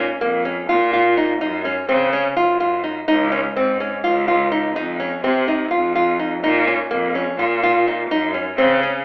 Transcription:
0.00 0.15 A#2 medium
0.00 0.18 C#4 medium
0.21 0.63 F2 medium
0.21 0.42 A#3 medium
0.45 0.66 C#4 medium
0.69 1.32 A#2 medium
0.69 0.90 F4 medium
0.93 1.14 F4 medium
1.17 1.38 D#4 medium
1.41 1.83 F#2 medium
1.41 1.62 D#4 medium
1.65 1.86 C#4 medium
1.89 2.31 C#3 medium
1.89 2.10 C4 medium
2.13 2.34 C#4 medium
2.36 3.00 F#2 medium
2.36 2.57 F4 medium
2.60 2.81 F4 medium
2.84 3.05 D#4 medium
3.08 3.50 C#2 medium
3.08 3.29 D#4 medium
3.32 3.53 C#4 medium
3.56 3.98 G#2 medium
3.56 3.77 C4 medium
3.80 4.01 C#4 medium
4.04 4.67 C#2 medium
4.04 4.25 F4 medium
4.28 4.49 F4 medium
4.52 4.73 D#4 medium
4.75 5.17 F2 medium
4.75 4.97 D#4 medium
5.00 5.21 C#4 medium
5.23 5.65 C3 medium
5.23 5.45 C4 medium
5.48 5.69 D#4 medium
5.71 6.34 F2 medium
5.71 5.92 F4 medium
5.95 6.16 F4 medium
6.19 6.40 D#4 soft
6.43 6.85 A#2 medium
6.43 6.64 D#4 medium
6.67 6.88 C#4 medium
6.90 7.33 F2 medium
6.90 7.12 A#3 medium
7.15 7.36 C#4 medium
7.38 8.01 A#2 medium
7.38 7.60 F4 medium
7.63 7.84 F4 medium
7.87 8.08 D#4 medium
8.10 8.52 F#2 medium
8.10 8.32 D#4 medium
8.34 8.55 C#4 medium
8.57 9.00 C#3 medium
8.57 8.79 C4 medium
8.83 9.04 C#4 medium

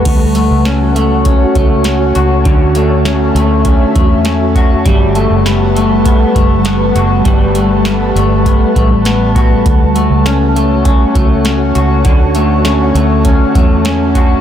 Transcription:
0.00 0.35 A3 medium
0.00 0.12 B3 soft
0.00 2.15 F#4 medium
0.05 0.48 D2 medium
0.05 4.81 F#4 medium
0.05 1.26 A4 medium
0.05 4.81 C#5 medium
0.05 2.43 F#5 medium
0.05 14.41 A5 medium
0.05 kick medium
0.05 closed hi-hat medium
0.05 crash medium
0.35 0.95 A3 soft
0.35 closed hi-hat soft
0.50 1.36 C#2 medium
0.65 1.25 C#4 medium
0.65 snare loud
0.65 closed hi-hat medium
0.96 1.56 A3 medium
0.96 closed hi-hat soft
1.25 1.85 C#4 medium
1.25 kick medium
1.25 closed hi-hat medium
1.55 2.12 C#2 medium
1.55 2.75 A3 medium
1.55 kick medium
1.55 closed hi-hat soft
1.84 3.04 C#4 medium
1.84 3.06 F#4 medium
1.84 snare loud
1.84 closed hi-hat medium
2.15 2.44 C#2 medium
2.15 4.55 F#4 medium
2.15 closed hi-hat soft
2.45 3.32 D2 loud
2.45 5.95 D3 medium
2.45 4.83 E5 medium
2.45 kick medium
2.45 closed hi-hat medium
2.75 3.35 A3 medium
2.75 closed hi-hat soft
3.05 3.64 C#4 medium
3.05 snare loud
3.05 closed hi-hat medium
3.35 3.78 D2 medium
3.35 3.95 A3 medium
3.35 closed hi-hat medium
3.65 4.24 C#4 medium
3.65 kick medium
3.65 closed hi-hat medium
3.95 4.82 E2 medium
3.95 5.15 A3 medium
3.95 kick medium
3.95 closed hi-hat soft
4.25 4.91 C#4 medium
4.25 snare loud
4.25 closed hi-hat medium
4.55 6.95 F#4 medium
4.55 kick medium
4.55 closed hi-hat soft
4.85 5.28 G1 medium
4.85 9.61 G3 medium
4.85 7.24 G3 medium
4.85 9.61 B4 medium
4.85 9.61 F#5 medium
4.85 kick loud
4.85 closed hi-hat medium
5.15 5.75 A3 medium
5.15 closed hi-hat soft
5.30 6.16 F#1 medium
5.45 6.04 B3 medium
5.45 snare loud
5.45 closed hi-hat medium
5.76 6.35 A3 medium
5.76 closed hi-hat soft
6.05 6.64 B3 medium
6.05 kick medium
6.05 closed hi-hat medium
6.35 6.92 F#1 medium
6.35 7.55 A3 soft
6.35 kick medium
6.35 closed hi-hat soft
6.65 7.84 B3 medium
6.65 snare loud
6.65 closed hi-hat medium
6.95 7.24 F#1 medium
6.95 9.35 F#4 medium
6.95 closed hi-hat soft
7.25 9.65 G3 medium
7.25 kick loud
7.25 closed hi-hat medium
7.55 8.15 A3 soft
7.55 closed hi-hat soft
7.85 8.44 B3 medium
7.85 snare loud
7.85 closed hi-hat medium
8.15 8.58 G1 medium
8.15 8.75 A3 medium
8.15 closed hi-hat soft
8.45 9.04 B3 soft
8.45 kick medium
8.45 closed hi-hat medium
8.76 9.62 A1 medium
8.76 9.95 A3 soft
8.76 kick medium
8.76 closed hi-hat soft
9.05 9.71 B3 medium
9.05 snare loud
9.05 closed hi-hat medium
9.35 11.75 F#4 medium
9.35 kick medium
9.35 closed hi-hat soft
9.64 10.08 D2 medium
9.64 14.41 F#4 medium
9.64 14.41 C#5 medium
9.64 14.41 F#5 medium
9.64 kick loud
9.64 closed hi-hat medium
9.95 10.55 A3 soft
9.95 closed hi-hat soft
10.10 10.96 C#2 medium
10.26 10.84 C#4 medium
10.26 snare loud
10.26 closed hi-hat medium
10.56 11.15 A3 soft
10.56 closed hi-hat soft
10.85 11.44 C#4 medium
10.85 kick medium
10.85 closed hi-hat medium
11.15 11.72 C#2 medium
11.15 12.35 A3 medium
11.15 kick medium
11.15 closed hi-hat soft
11.45 12.64 C#4 medium
11.45 snare medium
11.45 closed hi-hat medium
11.75 12.04 C#2 medium
11.75 14.15 F#4 medium
11.75 closed hi-hat medium
12.05 12.91 D2 medium
12.05 14.41 D3 medium
12.05 kick loud
12.05 closed hi-hat medium
12.34 12.94 A3 medium
12.34 13.55 A4 medium
12.34 closed hi-hat soft
12.65 13.23 C#4 medium
12.65 snare loud
12.65 closed hi-hat medium
12.95 13.38 D2 medium
12.95 13.55 A3 medium
12.95 closed hi-hat medium
13.24 13.84 C#4 medium
13.24 kick medium
13.24 closed hi-hat medium
13.55 14.41 E2 medium
13.55 14.41 A3 soft
13.55 kick medium
13.55 closed hi-hat soft
13.85 14.41 C#4 medium
13.85 snare loud
13.85 closed hi-hat medium
14.15 14.41 F#4 medium
14.15 kick medium
14.15 closed hi-hat soft

